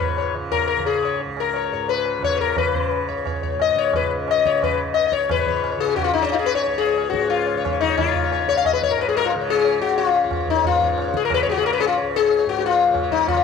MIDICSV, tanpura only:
0, 0, Header, 1, 2, 480
1, 0, Start_track
1, 0, Tempo, 340329
1, 1700, Time_signature, 4, 2, 24, 8
1, 9840, Tempo, 330943
1, 19211, End_track
2, 0, Start_track
2, 0, Title_t, "Tanpura"
2, 0, Program_c, 0, 104
2, 0, Note_on_c, 0, 37, 59
2, 0, Note_on_c, 0, 44, 54
2, 0, Note_on_c, 0, 49, 56
2, 480, Note_off_c, 0, 49, 0
2, 480, Note_on_c, 0, 49, 58
2, 1107, Note_off_c, 0, 49, 0
2, 1107, Note_on_c, 0, 49, 59
2, 1766, Note_off_c, 0, 37, 0
2, 1771, Note_on_c, 0, 37, 55
2, 2422, Note_off_c, 0, 44, 0
2, 2427, Note_on_c, 0, 44, 60
2, 3084, Note_off_c, 0, 49, 0
2, 3084, Note_on_c, 0, 49, 62
2, 3730, Note_off_c, 0, 49, 0
2, 3730, Note_on_c, 0, 49, 61
2, 4355, Note_off_c, 0, 37, 0
2, 4360, Note_on_c, 0, 37, 56
2, 5010, Note_off_c, 0, 44, 0
2, 5016, Note_on_c, 0, 44, 61
2, 5669, Note_off_c, 0, 49, 0
2, 5669, Note_on_c, 0, 49, 57
2, 6314, Note_off_c, 0, 49, 0
2, 6314, Note_on_c, 0, 49, 58
2, 6931, Note_off_c, 0, 37, 0
2, 6936, Note_on_c, 0, 37, 56
2, 7470, Note_off_c, 0, 44, 0
2, 7475, Note_on_c, 0, 44, 59
2, 8133, Note_off_c, 0, 49, 0
2, 8133, Note_on_c, 0, 49, 64
2, 8764, Note_off_c, 0, 49, 0
2, 8764, Note_on_c, 0, 49, 60
2, 9389, Note_off_c, 0, 37, 0
2, 9394, Note_on_c, 0, 37, 68
2, 10010, Note_off_c, 0, 44, 0
2, 10015, Note_on_c, 0, 44, 63
2, 10668, Note_off_c, 0, 49, 0
2, 10668, Note_on_c, 0, 49, 64
2, 11329, Note_off_c, 0, 49, 0
2, 11329, Note_on_c, 0, 49, 64
2, 11968, Note_off_c, 0, 37, 0
2, 11974, Note_on_c, 0, 37, 68
2, 12604, Note_off_c, 0, 44, 0
2, 12610, Note_on_c, 0, 44, 67
2, 13289, Note_off_c, 0, 49, 0
2, 13289, Note_on_c, 0, 49, 70
2, 13926, Note_off_c, 0, 49, 0
2, 13926, Note_on_c, 0, 49, 64
2, 14560, Note_off_c, 0, 37, 0
2, 14565, Note_on_c, 0, 37, 72
2, 15211, Note_off_c, 0, 44, 0
2, 15217, Note_on_c, 0, 44, 62
2, 15860, Note_off_c, 0, 49, 0
2, 15860, Note_on_c, 0, 49, 67
2, 16510, Note_off_c, 0, 49, 0
2, 16510, Note_on_c, 0, 49, 62
2, 17137, Note_off_c, 0, 37, 0
2, 17143, Note_on_c, 0, 37, 62
2, 17785, Note_off_c, 0, 44, 0
2, 17791, Note_on_c, 0, 44, 61
2, 18411, Note_off_c, 0, 49, 0
2, 18411, Note_on_c, 0, 49, 68
2, 19055, Note_off_c, 0, 49, 0
2, 19055, Note_on_c, 0, 49, 64
2, 19211, Note_off_c, 0, 37, 0
2, 19211, Note_off_c, 0, 44, 0
2, 19211, Note_off_c, 0, 49, 0
2, 19211, End_track
0, 0, End_of_file